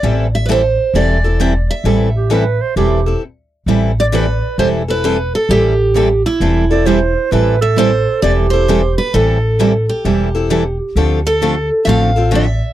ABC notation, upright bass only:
X:1
M:4/4
L:1/8
Q:"Swing" 1/4=132
K:Am
V:1 name="Upright bass" clef=bass
A,,,4 E,,,4 | A,,,4 E,,,2 z2 | A,,,4 E,,,4 | A,,,4 E,,,4 |
A,,,4 E,,,4 | A,,,4 E,,,4 | D,,4 A,,,4 |]